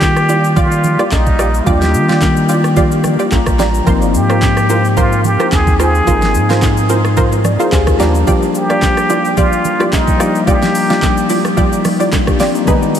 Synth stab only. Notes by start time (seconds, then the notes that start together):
0.29 F4 G4 D5
0.56 F4 G4 D5
0.99 F4 G4 D5
1.39 F4 G4 D5
1.66 F4 G4 D5
2.09 F4 G4 D5
2.49 F4 G4 D5
2.77 F4 G4 D5
3.19 F4 G4 D5
3.59 F4 G4 D5
3.87 F4 A#4 C5
4.29 F4 A#4 C5
4.69 F4 A#4 C5
4.97 F4 A#4 C5
5.39 F4 A#4 C5
5.79 F4 A#4 C5
6.07 F4 A#4 C5
6.49 F4 A#4 C5
6.89 F4 A#4 C5
7.17 F4 A#4 C5
7.59 F4 A#4 C5
7.99 F4 G4 D5
8.27 F4 G4 D5
8.69 F4 G4 D5
9.09 F4 G4 D5
9.37 F4 G4 D5
9.80 F4 G4 D5
10.19 F4 G4 D5
10.47 F4 G4 D5
10.90 F4 G4 D5
11.30 F4 G4 D5
11.57 F4 G4 D5
12.00 F4 G4 D5
12.40 F4 G4 D5
12.67 D#4 G#4 B4